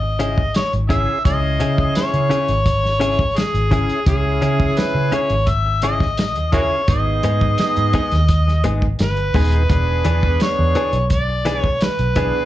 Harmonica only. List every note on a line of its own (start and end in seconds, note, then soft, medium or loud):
0.00 0.55 D#5 medium
0.56 0.72 C#5 medium
0.90 1.23 E5 loud
1.25 1.92 D#5 loud
1.97 3.38 C#5 loud
3.36 4.07 G#4 medium
4.08 4.80 G#4 medium
4.78 5.16 B4 medium
5.14 5.50 C#5 medium
5.48 5.83 E5 medium
5.83 6.49 D#5 loud
6.53 6.60 F#4 medium
6.53 6.60 A#4 medium
6.53 6.86 C#5 medium
6.90 8.85 D#5 loud
9.02 9.67 B4 medium
9.72 10.37 B4 medium
10.42 11.08 C#5 medium
11.13 11.59 D5 medium
11.59 11.85 C#5 medium
11.84 12.45 B4 medium